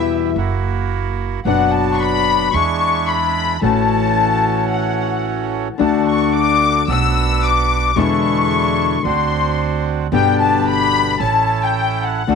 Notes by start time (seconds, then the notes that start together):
Already playing: E2 B2 E3 G3 B3 E4 G4 E5
0.36 F#1 A#3 E4 F#4
1.45 F#1 B2 F#3 B3 D4 F#4 F#5
1.72 A5
1.94 C#6
2.00 B5
2.54 E2 G#3 D4 E4 C#6
3.08 B5
3.61 A1 E3 A3 C#4 F#4 A5
4.71 F#5
5.78 D2 D3 A3 D4 F#4 A5
6.08 C#6
6.34 D6
6.88 B1 B3 D4 F#4 E6
7.44 D6
7.96 E2 B2 D3 G#3 B3 D4 E4 C#6
9.05 D2 C4 D4 F#4 C6
10.12 G1 B2 D3 G3 B3 D4 G4 G5
10.42 A5
10.69 B5
11.20 A1 C#4 E4 A4 A5
11.64 G5
12.04 F#5
12.27 D2 D3 A3 D4 F#4 A4